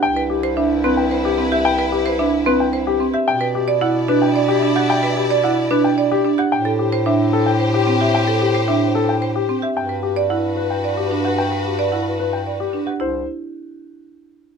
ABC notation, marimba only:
X:1
M:3/4
L:1/16
Q:1/4=111
K:Clyd
V:1 name="Marimba"
z B z c D z C z c z C G | z B z c D z C z c z C G | z B z d E z D z d z D G | z B z d E z D z d z D G |
z A z c D z3 c z C G | z A z c D z3 c z C G | z B z d E z3 d z D G | z B z d E z3 d z D G |
E2 z8 z2 |]